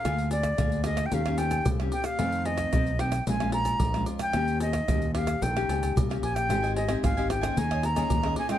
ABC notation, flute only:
X:1
M:4/4
L:1/16
Q:1/4=112
K:Ebmix
V:1 name="Flute"
f2 =d4 e3/2 g/2 f2 g4 g f- | f2 e4 g2 a2 b4 z g- | g2 e4 f2 g4 z2 a g- | g2 e2 f2 g2 a2 b4 a g |]